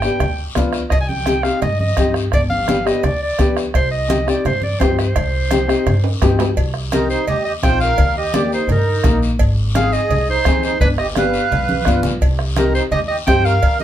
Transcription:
Already playing: clarinet G5
0.02 upright piano B3 D4 G4, bombo rim, short guiro
0.20 upright bass D2, bombo rim, cowbell, high conga, low conga, long guiro
0.55 upright bass D2, upright piano B3 D4 F4, bombo low, bombo rim, cowbell, high conga, low conga, short guiro
0.73 bombo rim, short guiro
0.90 upright bass C2, clarinet D#5, bombo low, bombo rim, cowbell, high conga, long guiro
1.01 clarinet G#5
1.08 clarinet G5, high conga
1.26 upright piano C4 D#4 G4, bombo rim, cowbell, high conga, short guiro
1.43 upright piano C4 D#4 G4, clarinet F5, bombo rim, short guiro
1.61 upright bass G2, clarinet D#5, bombo rim, cowbell, high conga, low conga, long guiro
1.80 clarinet D#5, high conga
1.97 upright bass G2, upright piano C4 D#4 G4, bombo low, bombo rim, cowbell, high conga, short guiro
2.14 bombo rim, short guiro
2.32 upright bass G1, clarinet D5, bombo low, bombo rim, cowbell, high conga, low conga, long guiro
2.50 clarinet F5, high conga
2.67 upright piano B3 D4 G4, bombo rim, cowbell, high conga, short guiro
2.84 upright piano B3 D4 G4, clarinet D#5, bombo rim, short guiro
3.03 upright bass D2, clarinet D5, bombo rim, cowbell, high conga, low conga, long guiro
3.23 clarinet D5
3.38 upright bass D2, upright piano B3 D4 G4, bombo low, bombo rim, cowbell, high conga, short guiro
3.57 bombo rim, short guiro
3.74 upright bass C2, clarinet C5, bombo low, bombo rim, cowbell, high conga, long guiro
3.91 clarinet D#5
4.08 upright piano C4 D#4 G4, bombo rim, cowbell, high conga, short guiro
4.26 upright piano C4 D#4 G4, clarinet D5, bombo rim, short guiro
4.45 upright bass G2, clarinet C5, bombo rim, cowbell, high conga, low conga, long guiro
4.62 clarinet D5, high conga
4.79 upright bass G2, upright piano C4 D#4 G4, clarinet C5, bombo low, bombo rim, cowbell, high conga, low timbale, short guiro
4.99 clarinet C5, bombo rim, short guiro
5.16 upright bass C2, bombo low, bombo rim, cowbell, high conga, low conga, long guiro
5.51 upright piano C4 D#4 G4, bombo rim, cowbell, high conga, short guiro
5.68 upright piano C4 D#4 G4, bombo rim, short guiro
5.86 upright bass G2, bombo rim, cowbell, high conga, low conga, long guiro
6.04 high timbale
6.22 upright bass G2, upright piano C4 D#4 G4, bombo low, bombo rim, cowbell, high conga, low timbale, short guiro
6.39 bombo rim, low timbale, short guiro
6.57 upright bass C2, bombo low, cowbell, high conga, long guiro
6.74 bombo rim
6.92 upright piano C4 D#4 G4, accordion D#4, clarinet A#4, bombo rim, cowbell, high conga, short guiro
7.10 accordion D#4, clarinet C5, short guiro
7.27 upright bass D#2, accordion G4, clarinet D#5, cowbell, high conga, low conga, long guiro
7.45 accordion G4, clarinet D#5
7.63 upright bass A#1, upright piano C4 D#4 F4, accordion C5, clarinet G5, bombo low, bombo rim, cowbell, high conga, short guiro
7.80 accordion A#4, clarinet F5, short guiro
7.98 upright bass D#2, bombo low, cowbell, high conga, low conga, long guiro
8.17 accordion G4, clarinet D#5
8.34 upright piano A#3 D#4 G4, accordion G4, clarinet D5, bombo rim, cowbell, high conga, short guiro
8.52 accordion D#4, clarinet C5, short guiro
8.68 upright bass G2, accordion D#4, clarinet A#4, cowbell, high conga, low conga, long guiro
9.04 upright bass A#1, upright piano A#3 D#4 A#4, bombo low, bombo rim, cowbell, high conga, low conga, short guiro
9.22 short guiro
9.39 upright bass G#1, bombo low, cowbell, high conga, long guiro
9.75 upright piano C4 D#4 G#4, accordion G#4, clarinet F5, bombo rim, cowbell, high conga, short guiro
9.93 accordion G#4, clarinet D#5, short guiro
10.10 upright bass C2, cowbell, high conga, low conga, long guiro
10.29 accordion D#4, clarinet C5
10.45 upright bass D#2, upright piano C4 D#4 G#4, bombo low, bombo rim, cowbell, high conga, short guiro
10.63 accordion D#4, clarinet C5, short guiro
10.81 upright bass G1, accordion D4, clarinet B4, bombo low, cowbell, high conga, low conga, long guiro
10.98 accordion G4, clarinet D#5, bombo rim
11.16 upright piano B3 D4 G4, accordion B4, clarinet F5, bombo rim, cowbell, high conga, short guiro
11.34 short guiro
11.51 upright bass B1, cowbell, high conga, low conga, long guiro
11.69 high conga
11.85 upright bass G1, upright piano B3 D4 F4, bombo low, bombo rim, cowbell, high conga, short guiro
12.03 upright bass B1, low conga, short guiro
12.21 upright bass C2, bombo low, cowbell, high conga, long guiro
12.39 bombo rim
12.56 upright piano C4 D#4 G4, accordion D#4, clarinet A#4, bombo rim, cowbell, high conga, short guiro
12.75 accordion D#4, clarinet C5, short guiro
12.91 upright bass D#2, accordion G4, clarinet D#5, cowbell, high conga, low conga, long guiro
13.08 accordion G4, clarinet D#5
13.26 upright bass G2, upright piano C4 D#4 G4, accordion C5, clarinet G5, bombo low, bombo rim, cowbell, high conga, short guiro
13.45 accordion A#4, clarinet F5, short guiro
13.63 upright bass D#2, bombo low, cowbell, high conga, long guiro
13.80 accordion G4, clarinet D#5, high conga

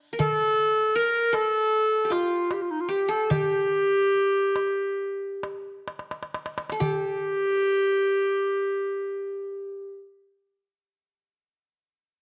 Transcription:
0.13 qanun A#4
0.19 qanun A4, clarinet A4, darbuka dum
0.95 qanun A#4, clarinet A#4
1.33 qanun A4, clarinet A4, darbuka tek
2.05 qanun G4
2.10 qanun F4, clarinet F4, darbuka tek
2.51 clarinet G4, darbuka tek
2.62 clarinet F4
2.71 clarinet D#4
2.81 clarinet F4
2.89 qanun G4, clarinet G4
3.08 qanun A4, clarinet A4
3.30 qanun G4, clarinet G4, darbuka dum
4.15 darbuka ka
4.56 darbuka tek
5.43 darbuka tek
5.88 darbuka tek
5.99 darbuka ka
6.11 darbuka tek
6.23 darbuka ka
6.34 darbuka tek
6.46 darbuka ka
6.58 darbuka tek
6.70 qanun A4, darbuka ka
6.80 qanun G4, clarinet G4, darbuka dum

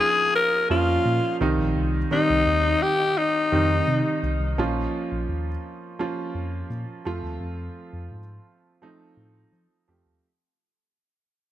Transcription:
Already playing: grand piano F3 A#3 C#4 D4 D#4 F4
0.00 alto saxophone G#4
0.35 alto saxophone A#4
0.70 tine electric piano F2, grand piano F3 A#3 C#4 F4, alto saxophone F4
1.06 tine electric piano A#2
1.41 tine electric piano C2, grand piano D#3 G3 C4 D#4
1.59 tine electric piano A#1
1.76 tine electric piano C2
2.11 grand piano D#3 G3 C4 D#4, alto saxophone D#4
2.29 tine electric piano C2
2.47 tine electric piano D#2
2.82 alto saxophone G4
3.18 alto saxophone D#4
3.52 tine electric piano F2, grand piano D#3 G3 C4 D#4
3.88 tine electric piano C3
4.23 tine electric piano C2
4.41 tine electric piano C2
4.58 tine electric piano A#1, grand piano F3 A#3 C#4 F4
5.11 tine electric piano A#1
5.29 tine electric piano D#2
5.99 grand piano F3 A#3 C#4 F4
6.35 tine electric piano F2
6.70 tine electric piano A#2
7.05 tine electric piano F2, grand piano F3 A3 C4 F4
7.23 tine electric piano D#2
7.41 tine electric piano F2
7.94 tine electric piano F2
8.11 tine electric piano G#2
8.82 grand piano F3 A3 C4 D#4
9.17 tine electric piano A2
9.53 tine electric piano F3
9.88 tine electric piano F2, grand piano F3 A3 C4 G4
10.06 tine electric piano D#2

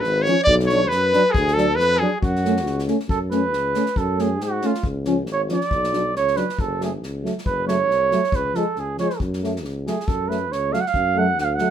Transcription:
0.00 cornet B4, flugelhorn B4, snare
0.04 tuba G#1
0.22 cornet C#5, flugelhorn C#5, snare
0.27 euphonium F3 C#4
0.44 cornet D5, flugelhorn D5, kick
0.48 tuba B1
0.60 snare
0.66 cornet C#5, flugelhorn C#5, snare
0.72 euphonium F#3 D4
0.87 flugelhorn B4, cornet B4
0.91 tuba F#2, snare
1.13 euphonium F#3 D4, snare
1.30 flugelhorn G#4, cornet G#4
1.34 tuba D2, kick
1.48 snare
1.54 euphonium F#3, cornet A4, flugelhorn A4
1.58 euphonium D4, snare
1.76 tuba F2, cornet B4, flugelhorn B4
1.80 snare
1.97 euphonium F#3, flugelhorn G#4, cornet G#4
2.01 euphonium D4
2.21 tuba F#2, flugelhorn F#4, cornet F#4, kick
2.36 snare
2.45 euphonium A3 C#4, snare
2.57 snare
2.66 tuba C#2, snare
2.79 snare
2.88 euphonium A3 C#4, snare
3.00 snare
3.08 tuba F#2, flugelhorn A4, kick
3.31 euphonium A3 C#4, flugelhorn B4, snare
3.53 tuba C#2, snare
3.74 euphonium A3 C#4, snare
3.86 snare
3.96 tuba F#2, flugelhorn A4, kick
4.19 euphonium A3 C#4, flugelhorn G#4, snare
4.40 tuba G#2, flugelhorn F#4, snare
4.62 euphonium A3 C#4, snare
4.66 flugelhorn F4
4.74 snare
4.83 tuba C#2, kick
5.05 euphonium F3 C#4, snare
5.26 tuba G#1, snare
5.32 flugelhorn C#5
5.49 euphonium F3 C#4, snare
5.53 flugelhorn D5
5.61 snare
5.71 tuba B1, kick
5.84 snare
5.93 euphonium F#3 D4, snare
6.16 tuba C#2, flugelhorn C#5, snare
6.27 snare
6.36 euphonium F#3 D4, flugelhorn B4, snare
6.49 snare
6.59 tuba F#1, flugelhorn A4, kick
6.80 euphonium F#3 A3, snare
6.84 flugelhorn G#4
7.03 tuba C#2, snare
7.24 euphonium F#3 A3, snare
7.38 snare
7.46 tuba F#1, flugelhorn B4, kick
7.67 euphonium F#3 A3, flugelhorn C#5, snare
7.90 tuba C2, snare
8.11 euphonium F#3 A3, snare
8.24 snare
8.32 tuba C#2, flugelhorn B4, kick
8.54 euphonium F3 G#3, flugelhorn A4, snare
8.76 tuba C#2, flugelhorn G#4, snare
8.98 euphonium F3 G#3, flugelhorn C#5, snare
9.10 snare
9.20 tuba F#2, kick
9.33 snare
9.43 euphonium F#3 A3, snare
9.56 snare
9.64 tuba C#2, snare
9.86 euphonium F#3 A3, flugelhorn G#4, snare
10.00 snare
10.07 tuba F#2, flugelhorn A4, kick
10.29 euphonium F#3 A3, flugelhorn B4, snare
10.52 tuba C#2, flugelhorn C#5, snare
10.71 euphonium F#3 A3, flugelhorn F5, snare
10.81 flugelhorn F#5
10.86 flugelhorn F5, snare
10.94 tuba F#2, kick
11.16 euphonium F#3 A3, flugelhorn F#5
11.38 tuba D2, flugelhorn F#5, snare
11.45 flugelhorn F5
11.55 flugelhorn F#5, snare
11.60 euphonium F#3 A3

